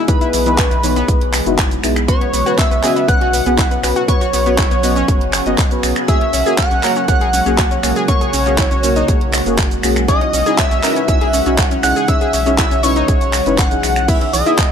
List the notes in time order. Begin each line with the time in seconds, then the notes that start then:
Already playing: B2 E3 G#3 B3 F#4 F#5
0.08 E3 B3 D#4 E4 G#4 B4 B5, kick, closed hi-hat, shaker
0.21 E4, closed hi-hat, shaker
0.33 B1 E3, open hi-hat, shaker
0.46 E3 B3 D#4 E4 G#4, closed hi-hat, shaker
0.58 C#4, kick, clap, closed hi-hat, shaker
0.71 B1 E3, closed hi-hat, shaker
0.83 E3 B3 D#4 E4 C#5, open hi-hat, shaker
0.96 B3, closed hi-hat, shaker
1.08 B1 B3 D#4 E4 G#4, kick, closed hi-hat, shaker
1.21 closed hi-hat
1.34 finger snap, clap, open hi-hat, shaker
1.46 F#1 B3 D#4 E4 F#4, closed hi-hat, shaker
1.58 kick, clap, closed hi-hat, shaker
1.71 closed hi-hat, shaker
1.83 B1 B3 D#4 E4 G#4, finger snap, open hi-hat, shaker
1.96 finger snap, closed hi-hat, shaker
2.08 C#3 F#3 B3 C#4 F#4 B4 C#5 C#6, kick, closed hi-hat, shaker
2.21 B3, closed hi-hat
2.33 B1 B3, open hi-hat, shaker
2.46 B3 C#4 F#4 B4, closed hi-hat, shaker
2.58 B3 E5 E6, kick, clap, closed hi-hat, shaker
2.71 B1 B3, closed hi-hat, shaker
2.83 B3 C#4 F#4 G#4 D#5, clap, open hi-hat, shaker
2.96 B3, closed hi-hat, shaker
3.08 B1 B3 C#4 F#4 B4 F#5 F#6, kick, closed hi-hat, shaker
3.21 F#4, closed hi-hat
3.33 B3, open hi-hat, shaker
3.46 B1 B3 C#4 F#4 G#4, closed hi-hat, shaker
3.58 E4, kick, clap, closed hi-hat, shaker
3.71 B3, closed hi-hat, shaker
3.83 B1 B3 C#4 F#4 B4, finger snap, open hi-hat, shaker
3.96 F#4, closed hi-hat, shaker
4.08 B3 C#4 F#4 G#4 B4 C#5 C#6, kick, closed hi-hat, shaker
4.21 F#4, closed hi-hat, shaker
4.33 B1 B3, open hi-hat, shaker
4.46 B3 C#4 F#4 B4, closed hi-hat, shaker
4.58 E4, kick, clap, closed hi-hat, shaker
4.71 B1 B3, closed hi-hat, shaker
4.83 B3 C#4 F#4 D#5, open hi-hat, shaker
4.96 C#4, closed hi-hat, shaker
5.08 F#1 B3 C#4 F#4 B4, kick, closed hi-hat, shaker
5.21 closed hi-hat
5.33 finger snap, clap, open hi-hat, shaker
5.46 F#1 B3 C#4 F#4 D#5, closed hi-hat, shaker
5.58 kick, clap, closed hi-hat, shaker
5.71 B3 C#4 F#4 B4, closed hi-hat, shaker
5.83 B1, finger snap, open hi-hat, shaker
5.96 finger snap, closed hi-hat, shaker
6.08 G#3 A#3 C#4 F#4 G#4 E5 E6, kick, closed hi-hat, shaker
6.21 C#4, closed hi-hat
6.33 B1 C#4, open hi-hat, shaker
6.46 A#3 C#4 F#4 G#4, closed hi-hat, shaker
6.58 C#4 F#5 F#6, kick, clap, closed hi-hat, shaker
6.71 B1 C#4, closed hi-hat, shaker
6.83 A#3 C#4 F#4 A#4 C#5, clap, open hi-hat, shaker
6.96 C#4, closed hi-hat, shaker
7.08 B1 A#3 C#4 F#4 G#4 F#5 F#6, kick, closed hi-hat, shaker
7.21 G#4, closed hi-hat
7.33 C#4, open hi-hat, shaker
7.46 B1 A#3 C#4 F#4 G#4, closed hi-hat, shaker
7.58 F#4, kick, clap, closed hi-hat, shaker
7.71 C#4, closed hi-hat, shaker
7.83 B1 A#3 C#4 F#4 G#4, finger snap, open hi-hat, shaker
7.96 G#4, closed hi-hat, shaker
8.08 A#3 C#4 F#4 G#4 C#5 C#6, kick, closed hi-hat, shaker
8.21 G#4, closed hi-hat, shaker
8.33 B1 C#4, open hi-hat, shaker
8.46 A#3 C#4 F#4 G#4, closed hi-hat, shaker
8.58 E4, kick, clap, closed hi-hat, shaker
8.71 B1 C#4, closed hi-hat, shaker
8.83 A#3 C#4 F#4 C#5, open hi-hat, shaker
8.96 D#4, closed hi-hat, shaker
9.08 B1 A#3 C#4 F#4 G#4, kick, closed hi-hat, shaker
9.21 closed hi-hat
9.33 finger snap, clap, open hi-hat, shaker
9.46 F#1 A#3 C#4 F#4 G#4, closed hi-hat, shaker
9.58 kick, clap, closed hi-hat, shaker
9.71 closed hi-hat, shaker
9.83 B1 A#3 C#4 F#4 G#4, finger snap, open hi-hat, shaker
9.96 finger snap, closed hi-hat, shaker
10.08 E3 C#4 D#4 E4 G#4 D#5 D#6, kick, closed hi-hat, shaker
10.21 C#4, closed hi-hat
10.33 B1 C#4, open hi-hat, shaker
10.46 C#4 D#4 E4 G#4, closed hi-hat, shaker
10.58 C#4 E5 E6, kick, clap, closed hi-hat, shaker
10.71 B1 C#4, closed hi-hat, shaker
10.83 C#4 D#4 E4 A#4 B4, clap, open hi-hat, shaker
10.96 C#4, closed hi-hat, shaker
11.08 B1 C#4 D#4 E4 G#4 E5 E6, kick, closed hi-hat, shaker
11.21 G#4, closed hi-hat
11.33 C#4, open hi-hat, shaker
11.46 B1 C#4 D#4 E4 F#4, closed hi-hat, shaker
11.58 F#4, kick, clap, closed hi-hat, shaker
11.71 C#4, closed hi-hat, shaker
11.83 B1 C#4 D#4 E4 G#4 F#5 F#6, finger snap, open hi-hat, shaker
11.96 G#4, closed hi-hat, shaker
12.08 C#4 D#4 E4 G#4 E5 E6, kick, closed hi-hat, shaker
12.21 G#4, closed hi-hat, shaker
12.33 B1 C#4, open hi-hat, shaker
12.46 C#4 D#4 E4 G#4, closed hi-hat, shaker
12.58 E4 E5 E6, kick, clap, closed hi-hat, shaker
12.71 B1 C#4, closed hi-hat, shaker
12.83 C#4 D#4 E4 B4 C#5 C#6, open hi-hat, shaker
12.96 D#4, closed hi-hat, shaker
13.08 B1 C#4 D#4 E4 G#4, kick, closed hi-hat, shaker
13.21 closed hi-hat, shaker
13.33 finger snap, clap, open hi-hat, shaker
13.46 F#1 C#4 D#4 E4 B4, closed hi-hat, shaker
13.58 F#5 F#6, kick, clap, closed hi-hat, shaker
13.71 C#4 D#4 E4 G#4, closed hi-hat, shaker
13.83 B1, finger snap, open hi-hat, shaker
13.96 finger snap, closed hi-hat, shaker
14.08 B2 B3 D#4 E4 F#4 G#4 E5 F#5 E6, kick, closed hi-hat, crash, shaker
14.21 E3, closed hi-hat
14.33 B1 E3 D#5 D#6, open hi-hat, shaker
14.46 B3 D#4 E4 G#4, closed hi-hat, shaker
14.58 E3, kick, clap, closed hi-hat, shaker